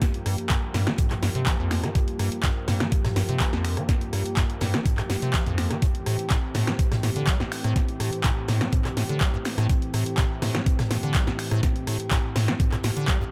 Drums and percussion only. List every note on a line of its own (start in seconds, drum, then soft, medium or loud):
0.02 kick loud
0.02 snare medium
0.02 closed hi-hat medium
0.14 closed hi-hat soft
0.26 cross-stick medium
0.26 closed hi-hat medium
0.26 open hi-hat loud
0.38 closed hi-hat medium
0.49 kick loud
0.49 snare loud
0.49 clap loud
0.49 closed hi-hat medium
0.74 cross-stick soft
0.74 snare soft
0.74 snare medium
0.74 closed hi-hat medium
0.74 mid tom medium
0.74 open hi-hat medium
0.87 finger snap medium
0.87 snare medium
0.87 closed hi-hat medium
0.98 kick loud
0.98 closed hi-hat medium
0.98 mid tom medium
1.10 cross-stick medium
1.10 clap soft
1.10 closed hi-hat soft
1.23 snare medium
1.23 closed hi-hat medium
1.23 open hi-hat loud
1.35 closed hi-hat medium
1.46 kick loud
1.46 cross-stick soft
1.46 snare loud
1.46 clap loud
1.46 closed hi-hat medium
1.71 finger snap medium
1.71 snare medium
1.71 closed hi-hat medium
1.71 open hi-hat medium
1.84 cross-stick medium
1.84 snare soft
1.84 closed hi-hat medium
1.95 kick loud
1.95 closed hi-hat medium
2.08 closed hi-hat soft
2.19 cross-stick medium
2.19 closed hi-hat medium
2.19 open hi-hat loud
2.32 closed hi-hat medium
2.43 kick loud
2.43 snare loud
2.43 clap loud
2.43 closed hi-hat medium
2.68 cross-stick soft
2.68 snare medium
2.68 snare soft
2.68 closed hi-hat medium
2.68 mid tom medium
2.68 open hi-hat medium
2.80 finger snap medium
2.80 snare medium
2.80 closed hi-hat medium
2.92 kick loud
2.92 closed hi-hat medium
3.05 cross-stick medium
3.05 snare medium
3.05 closed hi-hat soft
3.05 mid tom medium
3.16 snare medium
3.16 closed hi-hat medium
3.16 open hi-hat loud
3.29 closed hi-hat medium
3.40 kick loud
3.40 cross-stick soft
3.40 snare loud
3.40 clap loud
3.40 closed hi-hat medium
3.53 snare medium
3.65 finger snap medium
3.65 closed hi-hat medium
3.65 open hi-hat medium
3.77 cross-stick medium
3.77 closed hi-hat medium
3.89 kick loud
3.89 snare medium
3.89 closed hi-hat medium
4.01 closed hi-hat soft
4.13 cross-stick medium
4.13 closed hi-hat medium
4.13 open hi-hat loud
4.26 closed hi-hat medium
4.37 kick loud
4.37 snare loud
4.37 clap loud
4.37 closed hi-hat medium
4.50 closed hi-hat soft
4.61 cross-stick soft
4.61 snare medium
4.61 closed hi-hat medium
4.61 mid tom loud
4.61 open hi-hat medium
4.74 finger snap medium
4.74 snare medium
4.74 closed hi-hat medium
4.86 kick loud
4.86 closed hi-hat medium
4.86 closed hi-hat loud
4.86 mid tom medium
4.98 finger snap medium
4.98 cross-stick medium
4.98 clap soft
4.98 closed hi-hat soft
5.10 snare medium
5.10 closed hi-hat medium
5.10 open hi-hat loud
5.22 closed hi-hat medium
5.33 kick loud
5.33 cross-stick soft
5.33 snare loud
5.33 clap loud
5.33 closed hi-hat medium
5.46 closed hi-hat soft
5.46 mid tom medium
5.58 finger snap medium
5.58 snare medium
5.58 closed hi-hat medium
5.58 open hi-hat medium
5.71 cross-stick medium
5.71 snare soft
5.71 closed hi-hat medium
5.82 kick loud
5.82 closed hi-hat medium
5.95 closed hi-hat soft
6.06 cross-stick medium
6.06 closed hi-hat medium
6.06 open hi-hat loud
6.19 closed hi-hat medium
6.30 kick loud
6.30 snare loud
6.30 clap loud
6.30 closed hi-hat medium
6.54 cross-stick soft
6.54 snare medium
6.54 closed hi-hat medium
6.54 mid tom loud
6.54 open hi-hat loud
6.67 finger snap medium
6.67 snare medium
6.67 closed hi-hat medium
6.79 kick loud
6.79 closed hi-hat medium
6.92 cross-stick medium
6.92 snare medium
6.92 closed hi-hat soft
6.92 mid tom loud
7.03 snare medium
7.03 closed hi-hat medium
7.03 open hi-hat loud
7.16 closed hi-hat medium
7.27 kick loud
7.27 cross-stick soft
7.27 snare loud
7.27 clap loud
7.27 closed hi-hat medium
7.40 snare medium
7.52 finger snap medium
7.52 closed hi-hat medium
7.52 open hi-hat medium
7.64 cross-stick medium
7.64 closed hi-hat medium
7.76 kick loud
7.76 snare medium
7.76 closed hi-hat medium
7.88 closed hi-hat soft
8.00 cross-stick medium
8.00 closed hi-hat medium
8.00 open hi-hat loud
8.13 closed hi-hat medium
8.24 kick loud
8.24 snare loud
8.24 clap loud
8.24 closed hi-hat medium
8.48 cross-stick soft
8.48 snare medium
8.48 closed hi-hat medium
8.48 mid tom loud
8.48 open hi-hat loud
8.61 finger snap medium
8.61 snare medium
8.61 closed hi-hat medium
8.72 kick loud
8.72 closed hi-hat loud
8.72 closed hi-hat medium
8.72 mid tom medium
8.85 cross-stick medium
8.85 clap soft
8.85 closed hi-hat soft
8.97 snare medium
8.97 closed hi-hat medium
8.97 open hi-hat loud
9.09 closed hi-hat medium
9.21 kick loud
9.21 cross-stick soft
9.21 snare loud
9.21 clap loud
9.21 closed hi-hat medium
9.45 finger snap medium
9.45 snare medium
9.45 closed hi-hat medium
9.45 open hi-hat medium
9.58 cross-stick medium
9.58 snare soft
9.58 closed hi-hat medium
9.69 kick loud
9.69 closed hi-hat medium
9.82 closed hi-hat soft
9.93 cross-stick medium
9.93 closed hi-hat medium
9.93 open hi-hat loud
10.06 closed hi-hat medium
10.17 kick loud
10.17 snare loud
10.17 clap loud
10.17 closed hi-hat loud
10.17 closed hi-hat medium
10.42 cross-stick soft
10.42 snare soft
10.42 snare medium
10.42 closed hi-hat medium
10.42 mid tom loud
10.42 open hi-hat loud
10.55 finger snap medium
10.55 snare medium
10.66 kick loud
10.66 closed hi-hat medium
10.79 cross-stick medium
10.79 snare medium
10.79 closed hi-hat soft
10.79 mid tom loud
10.91 snare medium
10.91 closed hi-hat medium
10.91 open hi-hat loud
11.03 closed hi-hat medium
11.14 kick loud
11.14 cross-stick soft
11.14 snare loud
11.14 clap loud
11.14 closed hi-hat medium
11.27 snare medium
11.39 finger snap medium
11.39 closed hi-hat medium
11.39 open hi-hat loud
11.51 cross-stick medium
11.51 closed hi-hat medium
11.63 kick loud
11.63 snare medium
11.63 closed hi-hat medium
11.76 closed hi-hat soft
11.87 cross-stick medium
11.87 closed hi-hat medium
11.87 open hi-hat loud
12.00 closed hi-hat medium
12.11 kick loud
12.11 snare loud
12.11 clap loud
12.11 closed hi-hat medium
12.35 cross-stick soft
12.35 snare medium
12.35 closed hi-hat medium
12.35 mid tom loud
12.35 open hi-hat loud
12.48 finger snap medium
12.48 snare medium
12.48 closed hi-hat medium
12.60 kick loud
12.60 closed hi-hat medium
12.60 mid tom medium
12.72 cross-stick medium
12.72 clap soft
12.72 closed hi-hat soft
12.83 snare medium
12.83 closed hi-hat medium
12.83 open hi-hat loud
12.97 closed hi-hat medium
13.07 kick loud
13.07 cross-stick soft
13.07 snare loud
13.07 clap loud
13.07 closed hi-hat medium